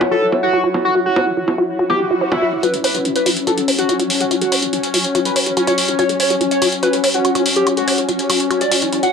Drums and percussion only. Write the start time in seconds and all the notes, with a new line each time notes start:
0.01 high bongo
0.32 high bongo
0.74 high bongo
1.16 high bongo
1.48 high bongo
1.90 high bongo
2.32 high bongo
2.63 closed hi-hat
2.74 closed hi-hat
2.84 open hi-hat
2.95 closed hi-hat
3.05 closed hi-hat
3.16 closed hi-hat
3.26 open hi-hat
3.37 closed hi-hat
3.47 closed hi-hat
3.58 closed hi-hat
3.68 open hi-hat
3.79 closed hi-hat
3.89 closed hi-hat
4.00 closed hi-hat
4.10 open hi-hat
4.20 closed hi-hat
4.31 closed hi-hat
4.41 closed hi-hat
4.52 open hi-hat
4.62 closed hi-hat
4.73 closed hi-hat
4.83 closed hi-hat
4.94 open hi-hat
5.04 closed hi-hat
5.15 closed hi-hat
5.25 closed hi-hat
5.36 open hi-hat
5.46 closed hi-hat
5.57 closed hi-hat
5.67 closed hi-hat
5.78 open hi-hat
5.88 closed hi-hat
5.99 closed hi-hat
6.09 closed hi-hat
6.20 open hi-hat
6.30 closed hi-hat
6.41 closed hi-hat
6.51 closed hi-hat
6.62 open hi-hat
6.72 closed hi-hat
6.83 closed hi-hat
6.93 closed hi-hat
7.04 open hi-hat
7.14 closed hi-hat
7.25 closed hi-hat
7.35 closed hi-hat
7.46 open hi-hat
7.56 closed hi-hat
7.67 closed hi-hat
7.77 closed hi-hat
7.88 open hi-hat
7.98 closed hi-hat
8.09 closed hi-hat
8.19 closed hi-hat
8.30 open hi-hat
8.40 closed hi-hat
8.51 closed hi-hat
8.61 closed hi-hat
8.72 open hi-hat
8.82 closed hi-hat
8.92 closed hi-hat
9.03 closed hi-hat